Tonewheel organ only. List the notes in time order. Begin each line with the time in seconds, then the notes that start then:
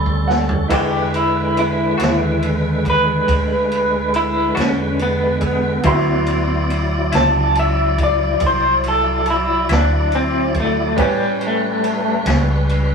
Already playing: G3 C#4 A4
0.68 D3 G#3 B4
5.84 F#3 E4 D5
10.95 G3 C#4 B4